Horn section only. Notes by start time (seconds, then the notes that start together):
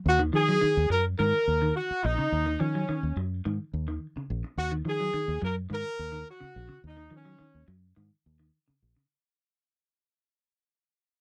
0.09 F#4
0.35 G#4
0.91 A#4
1.19 A#4
1.76 F#4
2.04 D#4
2.60 C#4
4.59 F#4
4.89 G#4
5.45 A#4
5.74 A#4
6.31 F#4
6.87 D#4
7.15 C#4